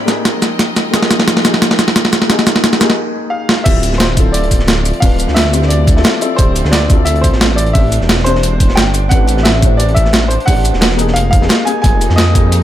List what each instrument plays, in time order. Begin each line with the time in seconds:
Already playing: string section A2 C4 E4 D5 G5 B5, felt piano C4 D4 G4 B4 C5 D5
0.05 felt piano A#3 D#4 G4, snare, closed hi-hat, shaker
0.10 felt piano G#4
0.25 string section F3 G#3 A#4 D#5, snare, closed hi-hat
0.42 snare, closed hi-hat, shaker
0.59 snare, closed hi-hat
0.76 snare, closed hi-hat, shaker
0.91 felt piano A#3 D#4 G4, snare, closed hi-hat
0.95 felt piano G#4
1.03 snare
1.11 snare, closed hi-hat, shaker
1.20 snare
1.28 snare, closed hi-hat
1.37 snare
1.42 felt piano A#3 D#4 G4, snare, closed hi-hat, shaker
1.47 felt piano G#4
1.54 snare
1.62 snare, closed hi-hat
1.71 snare
1.79 snare, closed hi-hat, shaker
1.88 snare
1.96 snare, closed hi-hat
2.05 snare
2.13 snare, closed hi-hat, shaker
2.22 snare
2.27 felt piano A#3 D#4 G4, snare, closed hi-hat
2.32 felt piano G#4
2.39 snare, shaker
2.47 snare, closed hi-hat, shaker
2.56 snare
2.64 snare, closed hi-hat
2.73 snare, shaker
2.78 felt piano A#3 D#4 G4, snare, closed hi-hat, shaker
2.83 felt piano G#4
2.90 snare
3.30 grand piano F5
3.49 snare
3.64 detuned saw bass D1, string section F3 C4 D5, felt piano C4 E4 F4, grand piano E5, kick, closed hi-hat, crash
3.68 felt piano G4
3.83 closed hi-hat, shaker
3.93 snare
3.98 grand piano C5, snare, closed hi-hat
4.15 felt piano C4 E4 F4, kick, closed hi-hat, shaker
4.20 felt piano A4
4.33 grand piano D5, closed hi-hat
4.43 closed hi-hat
4.51 kick, closed hi-hat, shaker
4.59 snare
4.67 snare, closed hi-hat
4.86 closed hi-hat, shaker
4.93 closed hi-hat
5.00 detuned saw bass D1, felt piano C4 D4 F4, grand piano F5, kick, closed hi-hat, open hi-hat
5.05 felt piano B4
5.19 closed hi-hat, shaker
5.28 detuned saw bass D2, snare
5.34 grand piano E5, snare, closed hi-hat
5.45 snare
5.51 felt piano C4 E4 F4, closed hi-hat, shaker
5.56 felt piano G4
5.62 snare
5.68 grand piano D5, closed hi-hat
5.87 kick, closed hi-hat, shaker
5.95 felt piano C4 E4 F4 A4, snare
6.04 snare, closed hi-hat
6.21 felt piano C4 E4 F4 A4, closed hi-hat, shaker
6.36 detuned saw bass D1, felt piano C4 E4, grand piano C5, kick, closed hi-hat
6.41 felt piano G4
6.55 closed hi-hat, shaker
6.65 detuned saw bass D2, snare
6.71 grand piano D5, snare, closed hi-hat
6.88 felt piano C4 E4 F4, kick, closed hi-hat, shaker
6.92 felt piano A4
7.05 grand piano E5, closed hi-hat
7.16 closed hi-hat
7.22 grand piano C5, kick, closed hi-hat, shaker
7.33 detuned saw bass A1, snare
7.41 snare, closed hi-hat
7.56 grand piano D5, closed hi-hat, shaker
7.66 closed hi-hat
7.72 detuned saw bass A1, felt piano C4 D4 G4, string section D4, grand piano E5, kick, closed hi-hat, open hi-hat
7.77 felt piano D5
7.92 closed hi-hat, shaker
8.01 detuned saw bass E1, snare
8.09 snare, closed hi-hat
8.19 snare
8.24 felt piano C4 D4 G4, grand piano C5, closed hi-hat, shaker
8.28 felt piano C5
8.35 snare
8.43 closed hi-hat
8.60 kick, closed hi-hat, shaker
8.69 snare
8.75 detuned saw bass G1, grand piano G5, snare, closed hi-hat
8.94 closed hi-hat, shaker
9.09 detuned saw bass A1, felt piano C4 D4 G4, grand piano F#5, kick, closed hi-hat
9.14 felt piano B4
9.27 closed hi-hat, shaker
9.37 snare
9.43 grand piano E5, snare, closed hi-hat
9.60 felt piano C4 D4 G4, kick, closed hi-hat, shaker
9.65 felt piano C5
9.77 grand piano D5, closed hi-hat
9.88 closed hi-hat
9.95 grand piano E5, kick, closed hi-hat, shaker
10.05 snare
10.13 snare, closed hi-hat
10.28 grand piano C5, closed hi-hat, shaker
10.40 closed hi-hat
10.45 detuned saw bass A1, felt piano C4 D4 G4, grand piano F#5, kick, closed hi-hat, open hi-hat
10.50 felt piano D5
10.65 closed hi-hat, shaker
10.74 detuned saw bass E1, snare
10.81 snare, closed hi-hat
10.90 snare
10.96 felt piano A#3 D#4 G4, closed hi-hat, shaker
11.01 felt piano G#4
11.08 snare
11.14 detuned saw bass F1, string section G#3 A#3 D#4, grand piano F5, closed hi-hat
11.31 grand piano F5, kick, closed hi-hat, shaker
11.41 felt piano A#3 D#4 G4 G#4, snare
11.49 snare, closed hi-hat
11.65 felt piano A#3 D#4 G4 G#4, grand piano G#5, closed hi-hat, shaker
11.82 detuned saw bass F1, felt piano A#3 D#4 F4, grand piano G#5, kick, closed hi-hat
11.86 felt piano G#4
12.01 closed hi-hat, shaker
12.10 detuned saw bass F2, snare
12.16 grand piano D#5, snare, closed hi-hat
12.33 felt piano A#3 D#4 G4, kick, closed hi-hat, shaker
12.38 felt piano G#4
12.52 closed hi-hat